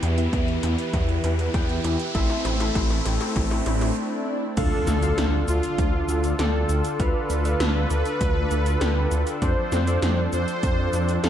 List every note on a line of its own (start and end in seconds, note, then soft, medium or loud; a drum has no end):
0.00 0.28 E2 loud
0.00 2.12 E3 medium
0.00 0.14 B3 medium
0.00 0.14 E4 medium
0.00 4.53 E4 medium
0.00 0.14 G4 medium
0.00 2.11 G4 medium
0.00 0.14 B4 medium
0.00 2.12 B4 medium
0.00 0.14 E5 medium
0.00 closed hi-hat medium
0.00 mid tom medium
0.00 riser medium
0.18 1.51 B3 medium
0.18 1.51 E4 medium
0.18 1.51 G4 medium
0.18 1.51 B4 medium
0.18 1.51 E5 medium
0.18 closed hi-hat medium
0.33 0.58 E2 medium
0.33 kick loud
0.33 closed hi-hat medium
0.33 mid tom medium
0.48 closed hi-hat soft
0.63 0.76 E2 loud
0.63 closed hi-hat medium
0.63 mid tom medium
0.78 closed hi-hat medium
0.93 1.19 E2 medium
0.93 kick loud
0.93 closed hi-hat medium
0.93 mid tom medium
1.09 closed hi-hat soft
1.24 1.49 E2 loud
1.24 closed hi-hat medium
1.24 mid tom medium
1.39 closed hi-hat medium
1.54 1.79 E2 medium
1.54 2.11 B3 medium
1.54 2.11 E4 medium
1.54 2.11 G4 medium
1.54 2.11 B4 medium
1.54 2.11 G5 medium
1.54 kick medium
1.54 closed hi-hat medium
1.54 mid tom medium
1.69 closed hi-hat soft
1.84 1.97 E2 loud
1.84 closed hi-hat loud
1.84 mid tom medium
1.99 closed hi-hat medium
2.15 2.27 A1 loud
2.15 4.55 A3 medium
2.15 2.57 C4 medium
2.15 4.55 C4 medium
2.15 2.57 E4 medium
2.15 2.57 A4 medium
2.15 2.57 C5 medium
2.15 2.57 E5 medium
2.15 kick loud
2.15 closed hi-hat medium
2.15 mid tom medium
2.30 closed hi-hat soft
2.30 mid tom medium
2.45 2.70 A1 loud
2.45 closed hi-hat medium
2.45 mid tom medium
2.60 3.93 C4 medium
2.60 3.93 E4 medium
2.60 3.93 A4 medium
2.60 3.93 C5 medium
2.60 3.93 E5 medium
2.60 closed hi-hat medium
2.60 mid tom medium
2.75 3.01 A1 medium
2.75 kick medium
2.75 closed hi-hat medium
2.75 mid tom loud
2.90 closed hi-hat soft
2.90 mid tom medium
3.06 3.18 A1 loud
3.06 closed hi-hat medium
3.06 mid tom loud
3.21 closed hi-hat medium
3.21 mid tom medium
3.36 3.61 A1 medium
3.36 kick loud
3.36 closed hi-hat medium
3.36 mid tom loud
3.36 swell medium
3.51 closed hi-hat soft
3.51 mid tom medium
3.66 3.92 A1 medium
3.66 closed hi-hat medium
3.66 mid tom loud
3.81 closed hi-hat soft
3.81 mid tom medium
4.57 4.70 D2 loud
4.57 9.38 D3 medium
4.57 11.29 D4 medium
4.57 4.99 D4 medium
4.57 9.38 F4 medium
4.57 4.99 F4 medium
4.57 11.29 A4 medium
4.57 4.99 A4 medium
4.57 5.36 A4 loud
4.57 4.99 D5 medium
4.57 4.99 F5 medium
4.57 kick loud
4.57 closed hi-hat medium
4.57 crash loud
4.57 impact medium
4.57 shaker soft
4.87 5.13 D2 loud
4.87 snare medium
4.87 closed hi-hat medium
4.87 shaker medium
5.03 6.35 D4 medium
5.03 6.35 F4 medium
5.03 6.35 A4 medium
5.03 6.35 D5 medium
5.03 6.35 F5 medium
5.03 closed hi-hat medium
5.03 shaker soft
5.18 5.43 D2 medium
5.18 snare loud
5.18 closed hi-hat medium
5.18 shaker soft
5.48 5.61 D2 loud
5.48 6.27 F4 loud
5.48 closed hi-hat medium
5.48 shaker medium
5.63 closed hi-hat medium
5.63 shaker soft
5.78 6.04 D2 medium
5.78 kick loud
5.78 closed hi-hat loud
5.78 shaker soft
6.09 6.34 D2 loud
6.09 closed hi-hat medium
6.09 shaker medium
6.24 closed hi-hat medium
6.24 shaker soft
6.39 6.64 D2 medium
6.39 6.96 D4 medium
6.39 6.96 F4 medium
6.39 6.96 A4 medium
6.39 6.86 A4 loud
6.39 6.96 D5 medium
6.39 6.96 G5 medium
6.39 snare loud
6.39 closed hi-hat loud
6.39 shaker soft
6.69 6.82 D2 loud
6.69 closed hi-hat medium
6.69 shaker medium
6.85 closed hi-hat medium
6.85 shaker soft
7.00 7.12 D2 loud
7.00 7.42 D4 medium
7.00 7.42 F4 medium
7.00 7.42 A4 medium
7.00 9.30 B4 loud
7.00 7.42 D5 medium
7.00 7.42 F5 medium
7.00 kick loud
7.00 closed hi-hat loud
7.00 shaker soft
7.30 7.55 D2 medium
7.30 closed hi-hat medium
7.30 shaker medium
7.45 8.78 D4 medium
7.45 8.78 F4 medium
7.45 8.78 A4 medium
7.45 8.78 D5 medium
7.45 8.78 F5 medium
7.45 closed hi-hat medium
7.45 shaker soft
7.60 7.86 D2 medium
7.60 snare loud
7.60 closed hi-hat loud
7.60 shaker soft
7.90 8.03 D2 loud
7.90 closed hi-hat medium
7.90 shaker medium
8.05 closed hi-hat medium
8.05 shaker soft
8.21 8.46 D2 medium
8.21 kick loud
8.21 closed hi-hat loud
8.21 shaker soft
8.51 8.77 D2 loud
8.51 closed hi-hat medium
8.51 shaker medium
8.66 closed hi-hat medium
8.66 shaker soft
8.81 9.07 D2 medium
8.81 9.38 D4 medium
8.81 9.38 F4 medium
8.81 9.38 A4 medium
8.81 9.38 D5 medium
8.81 9.38 G5 medium
8.81 snare loud
8.81 closed hi-hat loud
8.81 shaker soft
9.11 9.24 D2 loud
9.11 closed hi-hat medium
9.11 shaker medium
9.27 closed hi-hat medium
9.27 shaker soft
9.42 9.55 F2 loud
9.42 11.29 F3 medium
9.42 11.29 C4 medium
9.42 9.84 D4 medium
9.42 9.84 F4 medium
9.42 9.84 A4 medium
9.42 10.21 C5 loud
9.42 9.84 C5 medium
9.42 9.84 D5 medium
9.42 kick loud
9.42 closed hi-hat medium
9.42 shaker soft
9.72 9.98 F2 loud
9.72 snare medium
9.72 closed hi-hat medium
9.72 shaker medium
9.87 11.20 D4 medium
9.87 11.20 F4 medium
9.87 11.20 A4 medium
9.87 11.20 C5 medium
9.87 11.20 D5 medium
9.87 closed hi-hat medium
9.87 shaker soft
10.02 10.28 F2 medium
10.02 snare loud
10.02 closed hi-hat loud
10.02 shaker soft
10.33 10.46 F2 loud
10.33 11.12 C5 loud
10.33 closed hi-hat medium
10.33 shaker medium
10.48 closed hi-hat medium
10.48 shaker soft
10.63 10.88 F2 medium
10.63 kick loud
10.63 closed hi-hat loud
10.63 shaker soft
10.93 11.19 F2 loud
10.93 closed hi-hat medium
10.93 shaker medium
11.09 closed hi-hat medium
11.09 shaker soft
11.24 11.29 F2 medium
11.24 11.29 D4 medium
11.24 11.29 F4 medium
11.24 11.29 A4 medium
11.24 11.29 C5 medium
11.24 11.29 F5 medium
11.24 snare loud
11.24 closed hi-hat loud
11.24 shaker soft